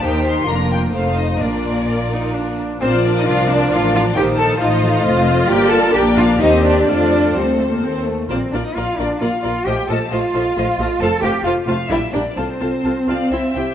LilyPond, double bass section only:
\new Staff \with { instrumentName = "Double bass section" } { \clef bass \time 3/4 \key bes \major \tempo 4 = 130 ees,4 f,,4 f,,4 | bes,,2~ bes,,8 r8 | bes,,4 c,4 a,,4 | bes,,4 a,,4 f,,4 |
g,,4 bes,,4 ees,4 | f,4 d,4 ees,4 | bes,,8 bes,,8 bes,,8 bes,,8 bes,,8 bes,,8 | bes,,8 bes,,8 bes,,8 bes,,8 bes,,8 bes,,8 |
\key f \major f,,8 f,,8 f,,8 f,,8 bes,,8 bes,,8 | c,8 c,8 c,8 c,8 c,8 c,8 | }